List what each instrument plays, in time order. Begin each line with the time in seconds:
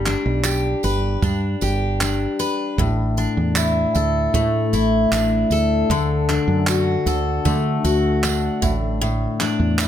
Already playing: fretless electric bass G1, steel-string acoustic guitar G3
0.06 steel-string acoustic guitar D4, clap, tambourine
0.26 fretless electric bass B1
0.44 steel-string acoustic guitar G4, clap, tambourine
0.83 fretless electric bass G1, steel-string acoustic guitar B4, tambourine
1.22 fretless electric bass G2, steel-string acoustic guitar D4, kick, tambourine
1.61 fretless electric bass G1, steel-string acoustic guitar G4, tambourine
2.01 steel-string acoustic guitar D4, clap, tambourine
2.39 steel-string acoustic guitar B4, tambourine
2.78 fretless electric bass A1, steel-string acoustic guitar A2, kick, tambourine
3.17 steel-string acoustic guitar D4, tambourine
3.37 fretless electric bass E2
3.56 steel-string acoustic guitar E4, clap, tambourine
3.95 fretless electric bass D2, steel-string acoustic guitar A4, tambourine
4.34 fretless electric bass A2, steel-string acoustic guitar A3, kick, tambourine
4.73 fretless electric bass A1, steel-string acoustic guitar E4, tambourine
5.12 fretless electric bass A1, steel-string acoustic guitar D4, clap, tambourine
5.50 fretless electric bass D2, steel-string acoustic guitar A4, tambourine
5.90 fretless electric bass D2, steel-string acoustic guitar D3, kick, tambourine
6.29 steel-string acoustic guitar D4, clap, tambourine
6.48 fretless electric bass F#2
6.67 steel-string acoustic guitar F#4, clap, tambourine
7.06 fretless electric bass D2, steel-string acoustic guitar A4, tambourine
7.45 fretless electric bass D3, steel-string acoustic guitar A3, kick, tambourine
7.84 fretless electric bass D2, steel-string acoustic guitar F#4, tambourine
8.23 steel-string acoustic guitar D4, clap, tambourine
8.62 fretless electric bass A1, steel-string acoustic guitar A2, kick, tambourine
9.01 steel-string acoustic guitar A2, tambourine
9.40 steel-string acoustic guitar D4, clap, tambourine
9.42 tambourine
9.60 fretless electric bass E2
9.79 steel-string acoustic guitar E4, clap, tambourine